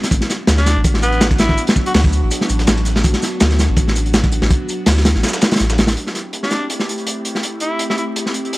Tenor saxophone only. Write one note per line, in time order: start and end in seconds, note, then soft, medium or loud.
0.58 0.80 D4 medium
1.03 1.25 B3 medium
1.40 1.62 E4 loud
1.87 1.92 F#4 medium
1.95 2.01 F#4 medium
6.43 6.65 D4 medium
7.61 7.84 E4 medium
7.90 7.95 E4 medium
7.98 8.05 E4 medium